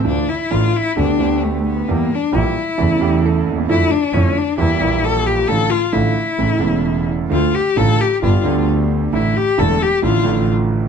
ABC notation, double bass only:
X:1
M:4/4
L:1/8
Q:1/4=133
K:Dm
V:1 name="Double bass" clef=bass
D,, z A,,, z D,, D,,3 | E,, z B,,, z E,, E,,2 _E,, | F,, z F,, z E,, B,,,3 | A,,, z A,,, z A,,, E,,,3 |
D,, z A,,, z G,,, D,,3 | A,,, z E,,, z A,,, A,,,3 |]